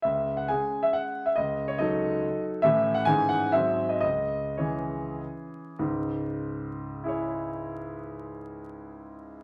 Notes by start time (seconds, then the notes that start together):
0.02 C#2 E5
0.37 F#5
0.48 G#3 C#4 G#4 G#5
0.83 E5
0.93 F#5
1.26 E5
1.36 C#2 D#5
1.68 C#5
1.78 F#3 D#4 A4 D#5
2.62 A2 E3 C#4 G4 E5
2.94 F#5
3.05 G#2 E3 C#4 G#4 G#5
3.29 F#5
3.52 G#2 F#3 C4 G#4 E5
3.89 D#5
4.01 C#2 D#5
4.57 E3 C#4 G#4 C#5
5.79 C#2 G#2
7.04 E4 G#4
7.08 C#5